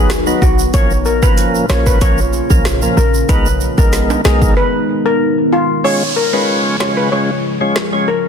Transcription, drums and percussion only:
0.10 cross-stick, snare, closed hi-hat, shaker
0.27 shaker
0.42 kick, shaker
0.59 shaker
0.74 kick, closed hi-hat, shaker
0.90 shaker
1.05 shaker
1.23 kick, shaker
1.37 closed hi-hat, shaker
1.55 shaker
1.69 snare, shaker
1.86 kick, shaker
2.01 kick, closed hi-hat, shaker
2.18 shaker
2.33 shaker
2.50 kick, shaker
2.65 cross-stick, snare, closed hi-hat, shaker
2.82 shaker
2.97 shaker
3.14 shaker
3.29 kick, closed hi-hat, shaker
3.46 shaker
3.61 shaker
3.78 kick, shaker
3.93 snare, closed hi-hat, shaker
4.10 high timbale, shaker
4.25 snare, shaker
4.42 kick, shaker
6.80 snare
7.76 cross-stick, snare

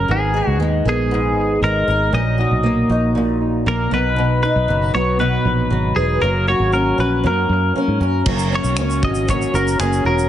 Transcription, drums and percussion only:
8.26 kick, crash
8.39 shaker
8.64 shaker
8.77 finger snap, shaker
8.90 shaker
9.03 kick
9.15 shaker
9.29 kick, shaker
9.42 shaker
9.55 shaker
9.68 shaker
9.80 finger snap, shaker
9.93 shaker
10.19 shaker

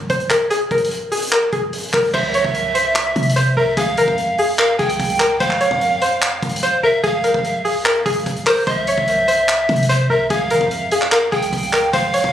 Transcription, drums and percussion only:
0.10 kick, closed hi-hat
0.20 closed hi-hat
0.30 clap, closed hi-hat
0.51 closed hi-hat
0.71 kick, closed hi-hat
0.78 closed hi-hat
0.85 closed hi-hat
0.91 closed hi-hat
1.12 closed hi-hat
1.17 closed hi-hat
1.22 closed hi-hat
1.27 closed hi-hat
1.32 clap, closed hi-hat
1.53 kick, closed hi-hat
1.73 closed hi-hat
1.78 closed hi-hat
1.83 closed hi-hat
1.88 closed hi-hat
1.93 kick, clap, open hi-hat
2.14 kick, crash
2.34 closed hi-hat
2.44 kick
2.55 closed hi-hat
2.75 closed hi-hat
2.95 clap, closed hi-hat
3.16 kick, closed hi-hat
3.23 closed hi-hat
3.29 closed hi-hat
3.36 closed hi-hat
3.77 kick, closed hi-hat
3.97 closed hi-hat
4.08 kick
4.18 closed hi-hat
4.38 open hi-hat
4.59 clap, closed hi-hat
4.79 kick, closed hi-hat
4.89 closed hi-hat
5.00 kick, closed hi-hat
5.05 closed hi-hat
5.10 closed hi-hat
5.15 closed hi-hat
5.20 clap, closed hi-hat
5.40 kick, closed hi-hat
5.51 clap
5.61 closed hi-hat
5.71 kick
5.81 closed hi-hat
6.02 closed hi-hat
6.22 clap, closed hi-hat
6.42 kick, closed hi-hat
6.49 closed hi-hat
6.56 closed hi-hat
6.63 closed hi-hat
7.04 kick, closed hi-hat
7.24 closed hi-hat
7.34 kick
7.45 closed hi-hat
7.65 open hi-hat
7.85 clap, closed hi-hat
8.06 kick, closed hi-hat
8.13 closed hi-hat
8.19 closed hi-hat
8.26 kick, closed hi-hat
8.36 closed hi-hat
8.47 clap, open hi-hat
8.67 kick, closed hi-hat
8.87 closed hi-hat
8.98 kick
9.08 closed hi-hat
9.28 closed hi-hat
9.49 clap, closed hi-hat
9.69 kick, closed hi-hat
9.76 closed hi-hat
9.83 closed hi-hat
9.89 closed hi-hat
10.30 kick, closed hi-hat
10.50 closed hi-hat
10.61 kick
10.71 closed hi-hat
10.91 closed hi-hat
11.02 clap
11.12 clap, closed hi-hat
11.32 kick, closed hi-hat
11.42 closed hi-hat
11.53 kick, closed hi-hat
11.58 closed hi-hat
11.63 closed hi-hat
11.68 closed hi-hat
11.73 clap, closed hi-hat
11.93 kick, closed hi-hat
12.14 closed hi-hat
12.24 kick

